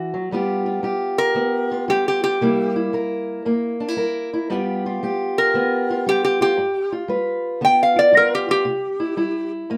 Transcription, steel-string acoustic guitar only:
Already playing: E3 F#4
0.14 F#3
0.31 G2 G3 B3 F4 G4
0.66 F4
0.83 G3 G4
1.34 D3 B3
1.71 F4
1.88 G3 F4
2.23 F4
2.41 C3 G3 A#3 E4
2.76 E4
2.93 G3 A#4
3.45 G2 A#3
3.80 D4
3.88 E4
3.96 G3 A#4
4.33 E4
4.50 G2 G3 B3 F4 G4
4.86 F4
5.03 G3 G4
5.54 D3 B3
5.90 F4
6.06 G3 F4
6.41 F4
6.57 G2
6.92 F4
7.08 G3 B4
7.61 D3 B3
7.96 F4
8.12 G3 F4
8.49 F4
8.65 C3
9.00 E4
9.17 G3 E4
9.70 G2 A#3

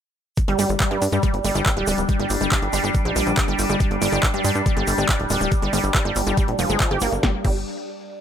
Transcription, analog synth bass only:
0.48 G1
0.59 G1
0.70 G1
0.91 G2
1.02 G2
1.12 G2
1.34 G1
1.45 G1
1.55 G1
1.77 D1
1.87 D1
1.98 D1
2.20 G1
2.30 G1
2.41 G1
2.62 G1
2.73 G1
2.84 G1
3.05 A#1
3.16 A#1
3.27 A#1
3.48 G1
3.59 G1
3.70 G1
3.91 G1
4.02 G1
4.12 G1
4.34 G2
4.45 G2
4.55 G2
4.77 G1
4.87 G1
4.98 G1
5.20 D1
5.30 D1
5.41 D1
5.62 G1
5.73 G1
5.84 G1
6.05 G1
6.16 G1
6.27 G1
6.48 A#1
6.59 F1
6.70 G1
6.91 G1
7.02 G1
7.12 G1
7.23 G1
7.45 G1

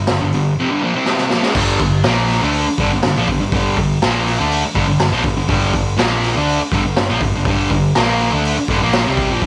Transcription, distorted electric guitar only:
0.08 G2 D3
0.21 G2 D3
0.34 G2 D3
0.59 F2 C3
0.71 G2 D3
0.82 A#2 F3
0.95 C3 G3 C4
1.31 A#2 F3
1.43 C#3 G#3
1.55 G2 D3 G3
1.81 G2 D3
2.05 A#2 F3 A#3
2.43 D3 A3 D4
2.67 muted distorted electric guitar stroke
2.79 G2 D3
2.93 G2 D3
3.04 G2 D3
3.16 A#2 F3
3.29 G2 D3
3.39 G2 D3
3.52 G2 D3 G3
3.78 G2 D3
4.02 A#2 F3 A#3
4.39 D3 A3 D4
4.65 muted distorted electric guitar stroke
4.75 G2 D3
4.88 G2 D3
5.00 G2 D3
5.12 A#2 F3
5.24 G2 D3
5.37 G2 D3
5.48 G2 D3 G3
5.74 G2 D3
5.97 A#2 F3 A#3
6.35 D3 A3 D4
6.60 muted distorted electric guitar stroke
6.73 G2 D3
6.84 G2 D3
6.97 G2 D3
7.10 A#2 F3
7.23 G2 D3
7.35 G2 D3
7.47 G2 D3 G3
7.72 G2 D3
7.96 A#2 F3 A#3
8.31 D3 A3 D4
8.57 muted distorted electric guitar stroke
8.69 G2 D3
8.82 A#2 F3 A#3
9.06 C3 G3 C4
9.30 A#2 F3
9.42 G2

